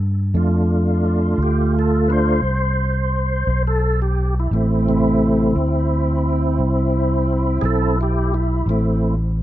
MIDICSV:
0, 0, Header, 1, 3, 480
1, 0, Start_track
1, 0, Key_signature, 0, "minor"
1, 0, Tempo, 693642
1, 245, Time_signature, 12, 3, 24, 8
1, 6523, End_track
2, 0, Start_track
2, 0, Title_t, "Tonewheel organ"
2, 0, Program_c, 0, 16
2, 238, Note_on_c, 0, 57, 47
2, 244, Note_on_c, 0, 62, 43
2, 254, Note_on_c, 0, 65, 49
2, 725, Note_off_c, 0, 62, 0
2, 733, Note_on_c, 0, 62, 67
2, 962, Note_off_c, 0, 62, 0
2, 986, Note_on_c, 0, 67, 72
2, 1209, Note_off_c, 0, 67, 0
2, 1237, Note_on_c, 0, 69, 71
2, 1439, Note_on_c, 0, 71, 53
2, 1444, Note_off_c, 0, 65, 0
2, 1445, Note_off_c, 0, 57, 0
2, 1451, Note_on_c, 0, 62, 36
2, 1453, Note_on_c, 0, 57, 42
2, 1453, Note_on_c, 0, 65, 49
2, 1455, Note_off_c, 0, 69, 0
2, 1463, Note_off_c, 0, 71, 0
2, 1469, Note_on_c, 0, 72, 75
2, 1665, Note_off_c, 0, 62, 0
2, 1666, Note_off_c, 0, 57, 0
2, 1666, Note_off_c, 0, 65, 0
2, 2510, Note_off_c, 0, 72, 0
2, 2542, Note_on_c, 0, 69, 73
2, 2767, Note_off_c, 0, 69, 0
2, 2782, Note_on_c, 0, 67, 76
2, 3007, Note_off_c, 0, 67, 0
2, 3042, Note_on_c, 0, 64, 80
2, 3134, Note_off_c, 0, 64, 0
2, 3137, Note_on_c, 0, 57, 50
2, 3138, Note_on_c, 0, 60, 44
2, 3142, Note_on_c, 0, 64, 53
2, 3372, Note_off_c, 0, 57, 0
2, 3381, Note_on_c, 0, 48, 78
2, 3381, Note_on_c, 0, 57, 88
2, 3826, Note_off_c, 0, 48, 0
2, 3839, Note_off_c, 0, 57, 0
2, 5269, Note_on_c, 0, 68, 56
2, 5278, Note_off_c, 0, 60, 0
2, 5286, Note_on_c, 0, 60, 75
2, 5296, Note_off_c, 0, 68, 0
2, 5296, Note_on_c, 0, 69, 86
2, 5509, Note_off_c, 0, 60, 0
2, 5524, Note_off_c, 0, 69, 0
2, 5533, Note_off_c, 0, 64, 0
2, 5541, Note_on_c, 0, 64, 68
2, 5554, Note_on_c, 0, 67, 72
2, 5758, Note_off_c, 0, 64, 0
2, 5773, Note_off_c, 0, 67, 0
2, 5774, Note_on_c, 0, 64, 72
2, 6003, Note_off_c, 0, 64, 0
2, 6014, Note_on_c, 0, 60, 44
2, 6016, Note_on_c, 0, 57, 49
2, 6022, Note_on_c, 0, 64, 53
2, 6329, Note_off_c, 0, 60, 0
2, 6330, Note_off_c, 0, 57, 0
2, 6333, Note_off_c, 0, 64, 0
2, 6523, End_track
3, 0, Start_track
3, 0, Title_t, "Fingered electric bass"
3, 0, Program_c, 1, 33
3, 0, Note_on_c, 1, 43, 75
3, 221, Note_off_c, 1, 43, 0
3, 235, Note_on_c, 1, 41, 70
3, 938, Note_off_c, 1, 41, 0
3, 955, Note_on_c, 1, 38, 73
3, 1659, Note_off_c, 1, 38, 0
3, 1676, Note_on_c, 1, 36, 71
3, 2380, Note_off_c, 1, 36, 0
3, 2401, Note_on_c, 1, 35, 81
3, 3102, Note_off_c, 1, 35, 0
3, 3122, Note_on_c, 1, 33, 75
3, 3822, Note_off_c, 1, 33, 0
3, 3843, Note_on_c, 1, 38, 80
3, 4543, Note_off_c, 1, 38, 0
3, 4559, Note_on_c, 1, 36, 73
3, 5261, Note_off_c, 1, 36, 0
3, 5276, Note_on_c, 1, 35, 77
3, 5979, Note_off_c, 1, 35, 0
3, 5993, Note_on_c, 1, 33, 75
3, 6523, Note_off_c, 1, 33, 0
3, 6523, End_track
0, 0, End_of_file